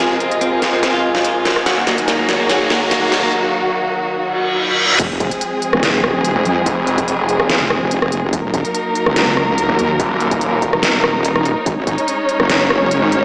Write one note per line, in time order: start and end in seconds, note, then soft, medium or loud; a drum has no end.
0.00 1.63 C3 medium
0.00 1.63 F3 medium
0.00 1.63 G#3 medium
0.00 1.63 F4 medium
0.00 1.66 F4 medium
0.00 2.41 A#4 medium
0.00 2.94 D#5 medium
0.00 2.42 G#5 medium
0.00 riser medium
0.11 0.19 C4 medium
0.20 0.30 C4 medium
0.20 closed hi-hat medium
0.31 closed hi-hat medium
0.41 0.50 C4 medium
0.41 closed hi-hat medium
0.52 0.60 C4 medium
0.62 snare medium
0.62 closed hi-hat medium
0.73 0.81 C4 medium
0.83 0.92 C4 medium
0.83 snare medium
0.83 closed hi-hat medium
0.94 1.58 F4 medium
1.15 snare medium
1.25 closed hi-hat medium
1.45 snare medium
1.45 closed hi-hat medium
1.56 cross-stick medium
1.66 4.96 D#3 medium
1.66 4.96 F#3 medium
1.66 4.96 A#3 medium
1.66 3.33 D#4 medium
1.66 1.75 F#4 medium
1.66 4.96 F#4 medium
1.66 snare medium
1.66 closed hi-hat medium
1.77 1.85 A#3 medium
1.87 1.96 A#3 medium
1.87 snare medium
1.87 closed hi-hat medium
1.95 3.33 G#4 medium
1.95 3.33 C#5 medium
1.95 closed hi-hat medium
2.08 2.17 A#3 medium
2.08 snare medium
2.08 closed hi-hat medium
2.19 2.27 A#3 medium
2.29 snare medium
2.29 closed hi-hat medium
2.40 2.48 A#3 medium
2.47 2.59 F#4 medium
2.47 3.33 F#5 medium
2.47 snare medium
2.47 closed hi-hat medium
2.61 2.69 A#3 medium
2.70 2.80 A#3 medium
2.70 snare medium
2.91 3.00 A#3 medium
2.91 snare medium
2.91 closed hi-hat medium
3.02 3.10 A#3 medium
3.12 snare medium
3.12 closed hi-hat medium
3.23 3.31 A#3 medium
4.16 reverse cymbal medium
5.00 5.30 F1 loud
5.00 8.30 F3 medium
5.00 8.30 G#3 medium
5.00 8.30 C4 medium
5.00 8.30 G#4 medium
5.00 kick loud
5.00 closed hi-hat medium
5.00 crash loud
5.00 sub drop medium
5.20 kick loud
5.20 closed hi-hat medium
5.31 closed hi-hat medium
5.41 closed hi-hat medium
5.62 closed hi-hat medium
5.73 6.34 D#1 loud
5.73 cross-stick medium
5.83 snare loud
5.83 closed hi-hat medium
6.04 cross-stick medium
6.25 closed hi-hat medium
6.36 6.44 F1 loud
6.45 6.65 F2 loud
6.45 closed hi-hat medium
6.66 6.96 F1 loud
6.66 kick loud
6.66 closed hi-hat medium
6.87 closed hi-hat medium
6.98 7.38 F1 medium
6.98 kick loud
6.98 closed hi-hat medium
7.08 closed hi-hat medium
7.29 closed hi-hat medium
7.40 7.59 D#1 medium
7.40 cross-stick medium
7.50 snare loud
7.50 closed hi-hat medium
7.61 7.80 F1 loud
7.70 cross-stick medium
7.81 8.31 F1 medium
7.91 closed hi-hat medium
8.02 cross-stick medium
8.12 closed hi-hat medium
8.33 8.63 D#1 loud
8.33 11.63 F#3 medium
8.33 11.63 A#3 medium
8.33 13.25 D#4 medium
8.33 11.63 A#4 medium
8.33 kick loud
8.33 closed hi-hat medium
8.54 kick loud
8.54 closed hi-hat medium
8.65 closed hi-hat medium
8.75 closed hi-hat medium
8.95 closed hi-hat medium
9.06 9.67 C#2 loud
9.06 cross-stick medium
9.16 snare loud
9.16 closed hi-hat medium
9.37 cross-stick medium
9.58 closed hi-hat medium
9.69 9.77 D#1 loud
9.79 9.98 D#2 loud
9.79 closed hi-hat medium
10.00 10.30 D#1 loud
10.00 kick loud
10.00 closed hi-hat medium
10.20 closed hi-hat medium
10.31 10.71 D#1 medium
10.31 kick loud
10.31 closed hi-hat medium
10.41 closed hi-hat medium
10.62 kick medium
10.62 closed hi-hat medium
10.73 11.55 D#1 medium
10.73 cross-stick medium
10.83 snare loud
10.83 closed hi-hat medium
11.04 cross-stick medium
11.25 closed hi-hat medium
11.36 cross-stick medium
11.45 closed hi-hat medium
11.66 11.96 G#1 loud
11.66 13.25 G#3 medium
11.66 13.25 C#4 medium
11.66 13.25 C#5 medium
11.66 kick loud
11.66 closed hi-hat medium
11.87 kick loud
11.87 closed hi-hat medium
11.98 closed hi-hat medium
12.08 closed hi-hat medium
12.29 closed hi-hat soft
12.40 13.00 F#1 medium
12.40 cross-stick medium
12.50 snare loud
12.50 closed hi-hat medium
12.70 cross-stick medium
12.91 closed hi-hat medium
13.02 13.10 G#1 loud
13.12 13.25 G#1 loud
13.12 closed hi-hat soft